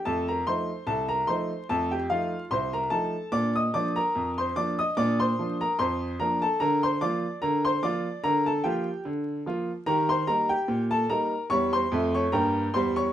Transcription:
0.05 0.40 F2 medium
0.05 0.29 A3 medium
0.05 0.26 A4 medium
0.05 0.27 A5 loud
0.28 0.46 A#4 medium
0.28 0.46 A#5 medium
0.47 0.69 F3 soft
0.47 0.69 A3 medium
0.47 0.70 D#4 medium
0.47 0.85 C5 medium
0.47 0.85 C6 loud
0.87 1.21 C2 medium
0.87 1.08 A4 medium
0.87 1.09 A5 loud
1.09 1.27 A#4 medium
1.09 1.27 A#5 loud
1.27 1.50 F3 soft
1.27 1.51 A3 medium
1.27 1.51 D#4 medium
1.27 1.66 C5 medium
1.27 1.66 C6 loud
1.69 2.04 F2 medium
1.69 1.93 A3 medium
1.69 1.90 A4 medium
1.69 1.91 A5 loud
1.91 2.09 G4 medium
1.91 2.10 G5 medium
2.10 2.32 F3 soft
2.10 2.33 A3 medium
2.10 2.33 D#4 medium
2.10 2.48 F4 medium
2.10 2.42 F5 loud
2.51 2.86 C2 medium
2.51 2.72 C5 medium
2.51 2.73 C6 loud
2.73 2.91 A#4 medium
2.73 2.92 A#5 medium
2.90 3.14 F3 medium
2.90 3.14 A3 medium
2.90 3.14 D#4 medium
2.90 3.30 A4 medium
2.90 3.30 A5 loud
3.32 3.67 A#2 medium
3.32 3.56 D4 medium
3.32 3.53 D5 medium
3.32 3.54 D6 loud
3.55 3.73 D#5 medium
3.55 3.74 D#6 loud
3.74 3.97 F3 medium
3.74 3.97 A#3 medium
3.74 3.97 D4 medium
3.74 3.95 D5 medium
3.74 3.96 D6 loud
3.96 4.35 A#4 medium
3.96 4.29 A#5 loud
4.15 4.50 F2 medium
4.38 4.56 C5 medium
4.38 4.56 C6 loud
4.56 4.79 F3 medium
4.56 4.79 A#3 medium
4.56 4.79 D4 medium
4.56 4.77 D5 medium
4.56 4.78 D6 loud
4.79 4.96 D#5 medium
4.79 4.97 D#6 loud
4.97 5.32 A#2 loud
4.97 5.21 D4 medium
4.97 5.18 D5 loud
4.97 5.19 D6 loud
5.19 5.58 C5 medium
5.19 5.58 C6 loud
5.39 5.61 F3 medium
5.39 5.61 A#3 soft
5.39 5.62 D4 medium
5.61 5.78 A#4 medium
5.61 5.79 A#5 loud
5.79 6.14 F2 medium
5.79 6.17 C5 medium
5.79 6.11 C6 loud
6.20 6.42 F3 medium
6.20 6.43 A#3 medium
6.20 6.43 D4 medium
6.20 6.41 A#4 medium
6.20 6.42 A#5 loud
6.42 6.60 A4 medium
6.42 6.60 A5 loud
6.60 6.95 D3 loud
6.60 6.82 A#4 loud
6.60 6.82 A#5 loud
6.83 7.01 C5 medium
6.83 7.01 C6 loud
7.01 7.24 F3 medium
7.01 7.24 A#3 medium
7.01 7.25 F4 medium
7.01 7.40 D5 medium
7.01 7.34 D6 loud
7.42 7.77 D3 loud
7.42 7.63 A#4 medium
7.42 7.64 A#5 loud
7.65 7.82 C5 medium
7.65 7.83 C6 loud
7.83 8.06 F3 medium
7.83 8.06 A#3 medium
7.83 8.06 F4 medium
7.83 8.22 D5 medium
7.83 8.22 D6 loud
8.24 8.59 D3 loud
8.24 8.45 A#4 medium
8.24 8.46 A#5 loud
8.46 8.64 A4 medium
8.46 8.65 A5 loud
8.64 8.87 F3 medium
8.64 8.87 A#3 medium
8.64 8.88 F4 medium
8.64 9.03 G4 medium
8.64 9.03 G5 loud
9.05 9.40 D3 medium
9.46 9.69 F3 medium
9.46 9.69 A#3 medium
9.46 9.70 F4 medium
9.86 10.22 D#3 loud
9.86 10.11 G4 medium
9.86 10.08 A#4 medium
9.86 10.09 A#5 loud
10.09 10.28 C5 medium
10.09 10.28 C6 loud
10.27 10.50 G3 medium
10.27 10.51 A#3 medium
10.27 10.51 D#4 medium
10.27 10.49 A#4 medium
10.27 10.50 A#5 loud
10.49 10.89 G4 medium
10.49 10.83 G5 loud
10.68 11.04 A#2 medium
10.91 11.09 A4 medium
10.91 11.10 A5 loud
11.10 11.33 G3 medium
11.10 11.33 A#3 medium
11.10 11.33 D#4 medium
11.10 11.49 A#4 medium
11.10 11.43 A#5 loud
11.50 11.84 E2 medium
11.50 11.85 G3 loud
11.50 11.72 C#5 loud
11.50 11.73 C#6 loud
11.73 12.12 C5 medium
11.73 12.12 C6 loud
11.92 12.25 F2 loud
11.92 12.26 A3 loud
12.15 12.33 C#5 medium
12.15 12.33 C#6 loud
12.32 12.66 G2 medium
12.32 12.67 A#3 medium
12.32 12.72 A#4 medium
12.32 12.72 G5 medium
12.32 12.72 A#5 loud
12.74 13.07 E2 loud
12.74 13.08 G3 loud
12.74 12.95 C5 medium
12.74 12.96 C6 loud
12.96 13.13 C#5 medium
12.96 13.13 C#6 loud

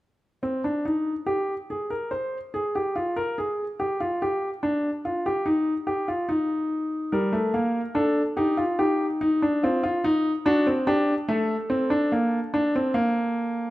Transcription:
0.43 0.63 C4 medium
0.64 0.84 D4 medium
0.85 1.11 D#4 medium
1.26 1.53 G4 medium
1.70 1.90 G#4 soft
1.90 2.10 A#4 medium
2.11 2.37 C5 medium
2.54 2.74 G#4 medium
2.75 2.95 G4 medium
2.96 3.16 F4 medium
3.16 3.36 A#4 medium
3.38 3.64 G#4 medium
3.80 4.00 G4 medium
4.00 4.20 F4 medium
4.22 4.48 G4 medium
4.63 4.89 D4 medium
5.05 5.25 F4 medium
5.26 5.46 G4 medium
5.46 5.72 D#4 medium
5.87 6.08 G4 medium
6.08 6.29 F4 medium
6.29 7.10 D#4 medium
7.12 7.33 G3 medium
7.12 7.93 A#4 medium
7.33 7.53 A3 medium
7.54 7.80 A#3 medium
7.95 8.21 D4 medium
7.95 8.21 A4 medium
8.37 8.57 D#4 medium
8.37 8.63 G4 medium
8.57 8.78 F4 medium
8.79 9.20 D#4 medium
8.79 9.05 G4 medium
9.21 9.41 D#4 medium
9.42 9.62 D4 medium
9.63 9.83 C4 medium
9.63 9.82 F4 medium
9.83 10.03 F4 medium
10.04 10.30 D#4 medium
10.46 10.66 D4 medium
10.46 10.71 F#4 medium
10.67 10.86 C4 medium
10.87 11.13 D4 medium
10.87 11.13 G4 medium
11.28 11.54 A3 medium
11.28 13.70 A4 medium
11.70 11.90 C4 medium
11.90 12.11 D4 medium
12.12 12.38 A#3 medium
12.54 12.73 D4 medium
12.75 12.95 C4 medium
12.94 13.70 A#3 medium

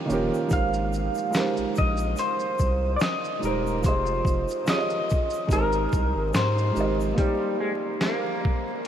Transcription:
0.00 0.06 D#3 medium
0.00 0.07 A#3 medium
0.00 0.09 C#4 medium
0.00 0.10 F4 medium
0.00 0.12 G4 medium
0.00 0.52 C5 medium
0.06 0.30 D#1 medium
0.06 0.44 D#3 medium
0.06 0.45 A#3 medium
0.06 0.46 C#4 medium
0.10 0.46 F4 medium
0.10 0.47 G4 medium
0.10 0.48 A#4 loud
0.10 shaker medium
0.10 shaker soft
0.34 shaker soft
0.47 1.22 G#3 medium
0.47 1.23 D#4 medium
0.47 shaker medium
0.51 1.09 G#1 medium
0.51 1.24 G4 medium
0.51 1.25 A#4 medium
0.51 1.26 C5 medium
0.51 1.78 F5 loud
0.51 kick loud
0.51 closed hi-hat medium
0.51 shaker medium
0.73 shaker soft
0.93 shaker soft
1.15 shaker soft
1.18 shaker soft
1.31 2.79 G#3 medium
1.31 2.80 D#4 medium
1.31 2.80 G4 medium
1.31 shaker medium
1.35 2.81 A#4 medium
1.35 2.82 C5 medium
1.35 snare loud
1.35 clap medium
1.35 closed hi-hat medium
1.35 shaker medium
1.57 1.65 A#1 soft
1.57 shaker soft
1.75 2.15 A#1 loud
1.75 2.19 D#5 medium
1.75 kick medium
1.75 shaker soft
1.97 shaker soft
1.99 shaker soft
2.16 closed hi-hat medium
2.16 shaker medium
2.19 2.91 C5 loud
2.19 shaker medium
2.39 shaker soft
2.58 2.97 C2 medium
2.58 kick medium
2.58 shaker medium
2.58 shaker soft
2.96 3.02 D5 medium
2.96 shaker medium
3.01 3.41 D#5 loud
3.01 snare loud
3.01 clap medium
3.01 closed hi-hat medium
3.01 shaker medium
3.24 shaker soft
3.39 3.86 D#1 loud
3.39 3.77 G#3 medium
3.39 3.78 D#4 medium
3.39 shaker soft
3.43 3.79 G4 medium
3.43 3.80 A#4 medium
3.43 3.83 A#4 medium
3.43 3.81 C5 medium
3.43 shaker soft
3.67 shaker medium
3.81 4.22 F1 loud
3.81 4.56 F3 medium
3.81 4.56 F4 medium
3.81 4.57 G4 medium
3.81 kick loud
3.81 shaker medium
3.85 4.58 G#4 medium
3.85 4.69 C5 medium
3.85 4.59 D#5 medium
3.85 closed hi-hat medium
3.85 shaker medium
4.06 shaker soft
4.25 4.46 F1 loud
4.25 kick loud
4.25 shaker soft
4.48 shaker soft
4.51 shaker soft
4.64 5.49 F3 medium
4.64 5.50 F4 medium
4.64 5.50 G4 medium
4.64 snare loud
4.64 shaker medium
4.68 5.52 G#4 medium
4.68 4.77 C#5 medium
4.68 5.48 D#5 loud
4.68 clap medium
4.68 closed hi-hat medium
4.68 shaker medium
4.78 5.56 D#5 medium
4.90 shaker soft
5.10 kick medium
5.10 shaker soft
5.30 shaker soft
5.33 shaker soft
5.47 5.87 G#1 loud
5.47 6.59 G#3 medium
5.47 6.60 D#4 medium
5.47 kick medium
5.47 shaker medium
5.51 6.61 G4 medium
5.51 6.35 A#4 medium
5.51 6.62 A#4 medium
5.51 6.63 C5 medium
5.51 closed hi-hat medium
5.51 shaker medium
5.72 shaker soft
5.92 6.14 C2 medium
5.92 kick medium
5.92 shaker soft
6.16 6.32 G#1 medium
6.34 6.71 G#2 medium
6.34 6.96 C5 medium
6.34 snare loud
6.34 clap medium
6.34 closed hi-hat medium
6.34 shaker medium
6.36 shaker medium
6.58 shaker soft
6.72 7.13 G#1 loud
6.72 7.11 G#3 medium
6.72 7.12 D#4 medium
6.72 7.13 G4 medium
6.72 shaker medium
6.72 shaker soft
6.78 7.14 A#4 medium
6.78 7.15 D#5 medium
7.00 shaker soft
7.14 8.62 A#3 medium
7.14 8.63 D#4 medium
7.14 8.64 G4 medium
7.14 kick loud
7.14 closed hi-hat medium
7.18 7.57 G3 medium
7.18 8.65 A#4 medium
7.18 8.66 C5 medium
7.61 7.72 G#3 medium
8.01 8.87 A#3 medium
8.01 snare loud
8.01 clap medium
8.01 closed hi-hat medium
8.45 kick medium

